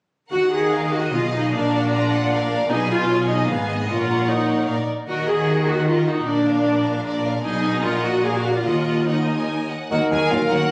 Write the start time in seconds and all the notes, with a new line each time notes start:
0.32 D#2 D#3 F#4 A#4 F#5
0.52 G#4
0.72 D#5 F5
0.92 F#4 D#5
1.12 B1 B2 F4 G#4 F5
1.32 D#4
1.53 A#1 A#2 D4 A#4 D5 F5
1.74 F#4
1.93 F4 D5 A#5
2.13 F#5
2.33 A#4 D5 F5
2.70 B1 B2 D#4 G#4 B4 G#5
2.90 F4
3.10 G#4 C#5 G#5
3.29 D#4 D#5
3.49 G#1 G#2 B3 F5 G#5
3.70 D#5
3.88 A#1 A#2 F4 A#4 C#5 F#5
4.28 D#4
4.67 A#1 A#2 A#4 D5 F5
5.07 D#2 D#3 F#4 A#4 D#5
5.28 F#4 G#4 A#4 F#5
5.48 F#4 A#4 D#5
5.68 F#4 A#4 F#5
5.88 F4 F#4 A#4 D#5
6.07 D#4 F#4 A#4 F#5
6.27 A#1 A#2 D4 A#4 D5
6.47 A#4 D5 F5
6.66 A#4 D5
6.86 A#4 D5 F5
7.05 A#4 D5
7.25 A#4 D5 F5
7.44 B1 B2 D#4 G#4 D#5 G#5
7.84 A#1 A#2 F4 A#4 D#5 F#5
8.04 F#4
8.24 A#1 A#2 G#4 A#4 D5 F5
8.36 F#4
8.56 F4
8.65 D#2 F4 A#4 D#5 F#5
9.07 D#4 A#4 D#5 F#5
9.29 G#5
9.71 F#5
9.90 D#2 F#3 A#3 D#4 F#4 A#4 F#5 A#5
10.11 D#2 F#3 A#3 G#4 G#5
10.31 D#2 F#3 A#3 C#4 F4 F5
10.51 D#2 F#3 A#3 F#4 F#5